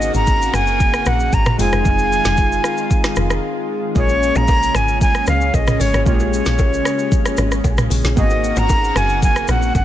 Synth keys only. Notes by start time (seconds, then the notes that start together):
Already playing: A#3 C4 D#4 F#4 G#4
1.58 G#3 C4 D#4 F4 G#4
3.95 G#3 A#3 C#4 F4 G#4
6.06 G#3 A#3 C#4 F4 G4
6.14 G#4
8.16 A#3 B3 D#4 F#4 G#4
8.23 C4